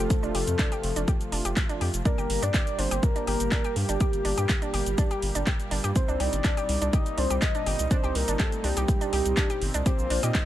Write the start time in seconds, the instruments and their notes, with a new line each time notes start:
Already playing: analog synth pad C3 F3 A3 F4, soft synth lead A4, sub drop
0.10 kick, closed hi-hat, shaker
0.23 sub bass F1, synth arpeggio sound D4, shaker
0.35 sub bass F1, synth arpeggio sound G4, open hi-hat
0.47 sub bass F2, closed hi-hat, shaker
0.59 synth arpeggio sound D4, kick, clap, closed hi-hat, shaker
0.72 synth arpeggio sound G4, closed hi-hat, shaker
0.83 sub bass F1, open hi-hat
0.96 sub bass F1, synth arpeggio sound D4, closed hi-hat, shaker
1.08 synth arpeggio sound G4, kick, closed hi-hat, shaker
1.21 closed hi-hat, shaker
1.32 sub bass F1, synth arpeggio sound D4, open hi-hat
1.45 sub bass F1, synth arpeggio sound G4, closed hi-hat, shaker
1.57 kick, clap, closed hi-hat, shaker
1.69 synth arpeggio sound D4, closed hi-hat, shaker
1.81 sub bass F2, synth arpeggio sound G4, open hi-hat
1.94 sub bass F1, closed hi-hat, shaker
2.05 analog synth pad A#2 G3 A#3 G4, synth arpeggio sound D4, soft synth lead A#4, kick, closed hi-hat, shaker
2.18 sub bass G1, synth arpeggio sound G4, shaker
2.30 sub bass G1, open hi-hat
2.42 sub bass G2, synth arpeggio sound D4, soft synth lead D5, closed hi-hat, shaker
2.54 synth arpeggio sound G4, kick, clap, closed hi-hat, shaker
2.67 closed hi-hat, shaker
2.78 sub bass G1, synth arpeggio sound D4, soft synth lead C5, open hi-hat
2.91 sub bass G1, synth arpeggio sound G4, closed hi-hat, shaker
3.03 soft synth lead A#4, kick, closed hi-hat, shaker
3.16 synth arpeggio sound D4, closed hi-hat, shaker
3.27 sub bass G1, synth arpeggio sound G4, soft synth lead A#4, open hi-hat
3.40 sub bass G1, closed hi-hat, shaker
3.52 synth arpeggio sound D4, kick, clap, closed hi-hat, shaker
3.64 synth arpeggio sound G4, closed hi-hat, shaker
3.76 sub bass G2, soft synth lead G4, open hi-hat
3.89 sub bass G1, synth arpeggio sound D4, closed hi-hat, shaker
4.00 synth arpeggio sound G4, kick, closed hi-hat, shaker
4.13 sub bass G1, closed hi-hat, shaker
4.25 sub bass G1, synth arpeggio sound D4, open hi-hat
4.38 sub bass G2, synth arpeggio sound G4, closed hi-hat, shaker
4.49 kick, clap, closed hi-hat, shaker
4.62 synth arpeggio sound D4, closed hi-hat, shaker
4.74 sub bass G1, synth arpeggio sound G4, open hi-hat
4.86 sub bass G1, closed hi-hat, shaker
4.98 synth arpeggio sound D4, kick, closed hi-hat, shaker
5.11 synth arpeggio sound G4, closed hi-hat, shaker
5.22 sub bass G1, open hi-hat
5.35 sub bass G1, synth arpeggio sound D4, closed hi-hat, shaker
5.47 synth arpeggio sound G4, kick, clap, closed hi-hat, shaker
5.60 closed hi-hat, shaker
5.71 sub bass G1, synth arpeggio sound D4, open hi-hat
5.84 sub bass G2, synth arpeggio sound G4, closed hi-hat, shaker
5.96 analog synth pad C4 D#4, soft synth lead C5, kick, closed hi-hat, shaker
6.08 sub bass C2, synth arpeggio sound D4, shaker
6.20 sub bass C2, synth arpeggio sound G4, soft synth lead D5, open hi-hat
6.33 sub bass G1, closed hi-hat, shaker
6.44 synth arpeggio sound D4, kick, clap, closed hi-hat, shaker
6.57 synth arpeggio sound G4, closed hi-hat, shaker
6.69 sub bass C2, open hi-hat
6.82 sub bass C2, synth arpeggio sound D4, closed hi-hat, shaker
6.93 synth arpeggio sound G4, soft synth lead D#5, kick, closed hi-hat, shaker
7.06 closed hi-hat, shaker
7.17 sub bass C2, synth arpeggio sound D4, soft synth lead C5, open hi-hat
7.30 sub bass C2, synth arpeggio sound G4, closed hi-hat, shaker
7.42 soft synth lead D#5, kick, clap, closed hi-hat, shaker
7.55 synth arpeggio sound D4, closed hi-hat, shaker
7.66 sub bass G1, synth arpeggio sound G4, open hi-hat
7.79 sub bass C2, closed hi-hat, shaker
7.91 synth arpeggio sound D4, soft synth lead C5, kick, closed hi-hat, shaker
8.04 sub bass C2, synth arpeggio sound G4, shaker
8.15 sub bass C2, soft synth lead A#4, open hi-hat
8.28 sub bass G1, synth arpeggio sound D4, closed hi-hat, shaker
8.39 synth arpeggio sound G4, soft synth lead A4, kick, clap, closed hi-hat, shaker
8.52 closed hi-hat, shaker
8.64 sub bass C2, synth arpeggio sound D4, soft synth lead G4, open hi-hat
8.77 sub bass C2, synth arpeggio sound G4, closed hi-hat, shaker
8.88 kick, closed hi-hat, shaker
9.01 synth arpeggio sound D4, closed hi-hat, shaker
9.13 sub bass C2, synth arpeggio sound G4, open hi-hat
9.26 sub bass C2, closed hi-hat, shaker
9.37 synth arpeggio sound D4, kick, clap, closed hi-hat, shaker
9.50 synth arpeggio sound G4, closed hi-hat, shaker
9.62 sub bass G1, open hi-hat
9.74 sub bass C2, synth arpeggio sound D4, closed hi-hat, shaker
9.86 analog synth pad A#3 F4, synth arpeggio sound G4, soft synth lead C5, kick, closed hi-hat, shaker
9.99 sub bass A#1, shaker
10.10 sub bass A#1, synth arpeggio sound D4, open hi-hat
10.23 sub bass A#2, synth arpeggio sound G4, soft synth lead D#5, closed hi-hat, shaker
10.35 kick, clap, closed hi-hat, shaker